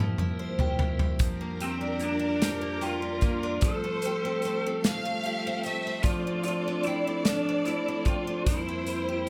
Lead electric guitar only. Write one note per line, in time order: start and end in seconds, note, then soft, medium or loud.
1.63 2.00 C4 medium
2.04 2.41 D4 medium
2.42 2.84 G4 medium
2.83 3.66 F4 loud
3.63 4.80 A4 loud
6.03 6.43 F4 loud
6.44 6.84 F4 loud
6.85 7.25 E4 loud
7.25 7.63 D4 medium
7.66 8.03 E4 loud
8.06 8.47 F4 loud
8.47 9.29 E4 medium